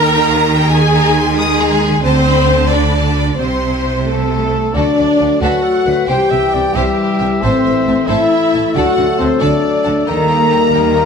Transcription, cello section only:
0, 0, Header, 1, 2, 480
1, 0, Start_track
1, 0, Tempo, 445434
1, 768, Time_signature, 6, 3, 24, 8
1, 11911, End_track
2, 0, Start_track
2, 0, Title_t, "Cello section"
2, 0, Program_c, 0, 48
2, 0, Note_on_c, 0, 51, 91
2, 2158, Note_off_c, 0, 51, 0
2, 2197, Note_on_c, 0, 50, 81
2, 3618, Note_off_c, 0, 50, 0
2, 3656, Note_on_c, 0, 48, 72
2, 4877, Note_off_c, 0, 48, 0
2, 5120, Note_on_c, 0, 50, 64
2, 5206, Note_off_c, 0, 50, 0
2, 5371, Note_on_c, 0, 50, 45
2, 5457, Note_off_c, 0, 50, 0
2, 5601, Note_on_c, 0, 50, 45
2, 5687, Note_off_c, 0, 50, 0
2, 5839, Note_on_c, 0, 50, 71
2, 5925, Note_off_c, 0, 50, 0
2, 6318, Note_on_c, 0, 50, 49
2, 6404, Note_off_c, 0, 50, 0
2, 6561, Note_on_c, 0, 48, 63
2, 6647, Note_off_c, 0, 48, 0
2, 6804, Note_on_c, 0, 48, 48
2, 6890, Note_off_c, 0, 48, 0
2, 7046, Note_on_c, 0, 48, 48
2, 7133, Note_off_c, 0, 48, 0
2, 7280, Note_on_c, 0, 48, 75
2, 7366, Note_off_c, 0, 48, 0
2, 7765, Note_on_c, 0, 48, 53
2, 7851, Note_off_c, 0, 48, 0
2, 8003, Note_on_c, 0, 45, 68
2, 8089, Note_off_c, 0, 45, 0
2, 8244, Note_on_c, 0, 45, 47
2, 8330, Note_off_c, 0, 45, 0
2, 8475, Note_on_c, 0, 45, 55
2, 8561, Note_off_c, 0, 45, 0
2, 8714, Note_on_c, 0, 45, 79
2, 8800, Note_off_c, 0, 45, 0
2, 9197, Note_on_c, 0, 45, 56
2, 9283, Note_off_c, 0, 45, 0
2, 9430, Note_on_c, 0, 50, 76
2, 9516, Note_off_c, 0, 50, 0
2, 9670, Note_on_c, 0, 50, 53
2, 9756, Note_off_c, 0, 50, 0
2, 9911, Note_on_c, 0, 50, 51
2, 9997, Note_off_c, 0, 50, 0
2, 10148, Note_on_c, 0, 50, 72
2, 10234, Note_off_c, 0, 50, 0
2, 10620, Note_on_c, 0, 50, 49
2, 10706, Note_off_c, 0, 50, 0
2, 10860, Note_on_c, 0, 51, 75
2, 11493, Note_off_c, 0, 51, 0
2, 11573, Note_on_c, 0, 51, 64
2, 11911, Note_off_c, 0, 51, 0
2, 11911, End_track
0, 0, End_of_file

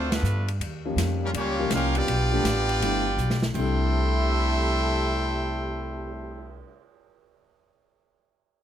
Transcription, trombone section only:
0, 0, Header, 1, 2, 480
1, 0, Start_track
1, 0, Key_signature, 0, "major"
1, 0, Tempo, 367872
1, 792, Time_signature, 4, 2, 24, 8
1, 11262, End_track
2, 0, Start_track
2, 0, Title_t, "Trombone section"
2, 0, Program_c, 0, 61
2, 0, Note_on_c, 0, 60, 85
2, 127, Note_on_c, 0, 59, 82
2, 136, Note_on_c, 0, 50, 78
2, 136, Note_on_c, 0, 53, 77
2, 141, Note_off_c, 0, 60, 0
2, 615, Note_off_c, 0, 59, 0
2, 620, Note_off_c, 0, 50, 0
2, 620, Note_off_c, 0, 53, 0
2, 1608, Note_on_c, 0, 55, 80
2, 1609, Note_on_c, 0, 58, 72
2, 1613, Note_on_c, 0, 49, 75
2, 1677, Note_off_c, 0, 55, 0
2, 1678, Note_off_c, 0, 58, 0
2, 1681, Note_off_c, 0, 49, 0
2, 1759, Note_on_c, 0, 55, 96
2, 1760, Note_on_c, 0, 58, 85
2, 1761, Note_on_c, 0, 61, 91
2, 2200, Note_off_c, 0, 55, 0
2, 2201, Note_off_c, 0, 58, 0
2, 2201, Note_off_c, 0, 61, 0
2, 2236, Note_on_c, 0, 61, 86
2, 2236, Note_on_c, 0, 65, 96
2, 2238, Note_on_c, 0, 58, 84
2, 2545, Note_off_c, 0, 61, 0
2, 2545, Note_off_c, 0, 65, 0
2, 2546, Note_off_c, 0, 58, 0
2, 2553, Note_on_c, 0, 62, 103
2, 2554, Note_on_c, 0, 59, 101
2, 2556, Note_on_c, 0, 67, 100
2, 4465, Note_off_c, 0, 59, 0
2, 4465, Note_off_c, 0, 62, 0
2, 4466, Note_off_c, 0, 67, 0
2, 4623, Note_on_c, 0, 48, 101
2, 4623, Note_on_c, 0, 57, 108
2, 4628, Note_on_c, 0, 55, 103
2, 4628, Note_on_c, 0, 64, 110
2, 8615, Note_off_c, 0, 48, 0
2, 8615, Note_off_c, 0, 57, 0
2, 8620, Note_off_c, 0, 55, 0
2, 8620, Note_off_c, 0, 64, 0
2, 11262, End_track
0, 0, End_of_file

